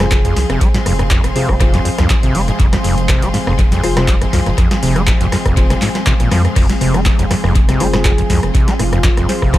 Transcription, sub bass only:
0.00 0.30 F1 medium
0.36 0.45 C2 loud
0.50 0.57 F1 medium
0.86 1.16 F1 loud
1.24 1.31 F1 medium
1.49 1.78 F1 loud
1.98 2.06 C2 loud
2.23 2.31 G#1 medium
2.35 2.51 F1 loud
2.60 2.76 F1 loud
2.84 3.15 F1 loud
3.22 3.30 F1 medium
3.47 3.77 F1 loud
3.84 4.26 F1 medium
4.33 4.41 C2 loud
4.46 4.54 F1 medium
4.83 5.13 F1 loud
5.21 5.28 F1 medium
5.46 5.75 F1 loud
6.20 6.27 G#1 loud
6.31 6.48 F2 loud
6.56 6.72 F1 loud
6.81 7.11 F1 loud
7.19 7.26 F1 medium
7.44 7.73 F1 loud
7.80 8.23 F1 medium
8.30 8.38 C2 loud
8.43 8.50 F1 medium
8.79 9.10 F1 loud
9.17 9.25 F1 medium
9.42 9.58 F1 loud

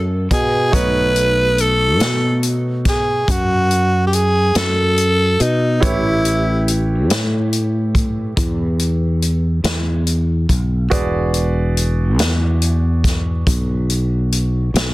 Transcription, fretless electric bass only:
0.00 0.27 F#2 medium
0.31 0.70 B2 medium
0.73 2.00 B1 medium
2.00 3.23 B2 medium
3.28 4.51 F#2 medium
4.55 5.36 F#2 medium
5.40 5.79 B2 medium
5.83 7.10 A1 medium
7.10 8.33 A2 medium
8.37 9.60 E2 medium
9.64 10.45 E2 medium
10.49 10.88 B1 medium
12.19 13.43 E2 medium
13.47 14.70 B1 medium
14.74 14.94 B1 medium

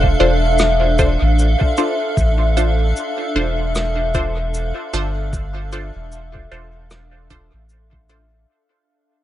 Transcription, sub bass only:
0.00 0.17 E1 medium
0.20 1.17 E1 loud
1.22 1.56 A1 medium
2.17 2.93 A1 loud
3.35 4.72 E1 loud
4.93 5.91 G1 medium
5.95 6.48 E1 medium
6.51 7.30 E1 loud
7.31 7.51 E1 medium
7.53 8.46 A1 loud

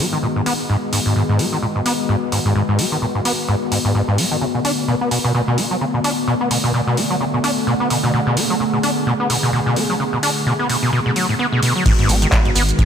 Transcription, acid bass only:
0.13 0.18 D#3 medium
0.23 0.27 A#2 medium
0.36 0.42 G#2 medium
0.46 0.53 B3 loud
0.69 0.77 G#2 loud
0.93 1.00 G#2 medium
1.06 1.14 G#2 medium
1.16 1.23 G#2 loud
1.29 1.41 G#2 loud
1.39 1.46 G#3 medium
1.52 1.58 D#3 medium
1.62 1.67 A#2 medium
1.76 1.81 G#2 medium
1.86 1.93 B3 loud
2.09 2.16 G#2 loud
2.32 2.39 G#2 medium
2.45 2.54 G#2 medium
2.55 2.63 G#2 loud
2.69 2.80 G#2 loud
2.79 2.86 G#3 medium
2.92 2.97 D#3 medium
3.02 3.06 A#2 medium
3.15 3.21 G#2 medium
3.25 3.32 B3 medium
3.48 3.56 G#2 loud
3.72 3.79 G#2 medium
3.85 3.93 G#2 loud
3.95 4.02 G#2 loud
4.08 4.20 G#2 loud
4.18 4.25 G#3 medium
4.31 4.37 D#3 medium
4.41 4.46 C#3 medium
4.54 4.60 B2 medium
4.65 4.72 D4 loud
4.88 4.95 B2 loud
5.01 5.09 B3 medium
5.11 5.18 B2 medium
5.24 5.33 B2 medium
5.35 5.42 B2 loud
5.48 5.59 B2 loud
5.58 5.65 B3 medium
5.71 5.76 F#3 medium
5.81 5.85 C#3 medium
5.94 6.00 B2 medium
6.04 6.12 D4 loud
6.27 6.35 B2 loud
6.41 6.49 B3 medium
6.51 6.58 B2 medium
6.64 6.72 B2 loud
6.74 6.81 B2 loud
6.87 6.99 B2 loud
6.97 7.04 B3 medium
7.10 7.16 F#3 medium
7.21 7.25 C#3 medium
7.34 7.39 B2 medium
7.44 7.51 D4 loud
7.67 7.74 B2 loud
7.80 7.89 B3 medium
7.90 7.98 B2 medium
8.03 8.12 B2 loud
8.14 8.21 B2 loud
8.27 8.38 B2 loud
8.37 8.44 B3 medium
8.50 8.56 F#3 medium
8.60 8.64 C#3 medium
8.73 8.79 B2 medium
8.83 8.91 D4 loud
9.07 9.14 B2 loud
9.20 9.28 B3 medium
9.30 9.37 B2 medium
9.43 9.51 B2 loud
9.53 9.60 B2 loud
9.66 9.78 B2 loud
9.76 9.84 B3 medium
9.90 9.95 F#3 medium
10.00 10.04 C#3 medium
10.13 10.18 B2 medium
10.23 10.30 D4 loud
10.46 10.53 B2 loud
10.59 10.68 B3 medium
10.69 10.77 B2 medium
10.83 10.91 B2 medium
10.93 11.00 B2 loud
11.06 11.11 B2 loud
11.16 11.27 F#3 medium
11.29 11.35 A2 medium
11.39 11.46 B3 loud
11.52 11.61 B2 loud
11.62 11.73 B2 loud
11.76 11.84 F#3 medium
11.86 11.93 G#2 loud
11.99 12.10 G#2 loud
12.09 12.16 G#3 medium
12.22 12.28 D#3 medium
12.32 12.37 A#2 medium
12.45 12.51 G#2 medium
12.55 12.63 B3 loud
12.79 12.85 G#2 loud

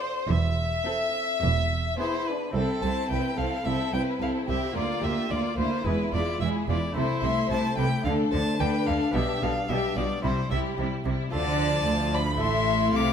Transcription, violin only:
0.00 0.32 C5 medium
0.30 1.98 E5 medium
1.99 2.28 C5 medium
2.27 2.54 B4 medium
2.54 2.84 A4 medium
2.82 3.09 A5 medium
3.10 3.39 G5 medium
3.37 3.66 F5 medium
3.65 3.93 E5 medium
3.93 4.01 G5 medium
4.21 4.29 F5 soft
4.49 4.76 E5 medium
4.77 5.05 D5 medium
5.03 5.32 E5 medium
5.31 5.57 D5 medium
5.58 5.87 C5 medium
5.86 6.13 B4 medium
6.13 6.40 D5 medium
6.40 6.48 E5 medium
6.70 6.95 D5 soft
6.96 7.25 C5 medium
7.24 7.50 C6 medium
7.51 7.77 A5 medium
7.77 8.04 G5 medium
8.04 8.12 F5 medium
8.32 8.61 A5 medium
8.60 8.88 G5 medium
8.86 9.14 F5 medium
9.15 9.44 E5 medium
9.43 9.70 F5 medium
9.69 9.98 E5 medium
9.96 10.23 D5 medium
10.23 10.50 C5 medium
10.51 10.59 E5 medium
11.33 12.16 A5 medium
12.14 12.41 B5 medium
12.42 12.97 C6 medium
12.96 13.13 D6 medium

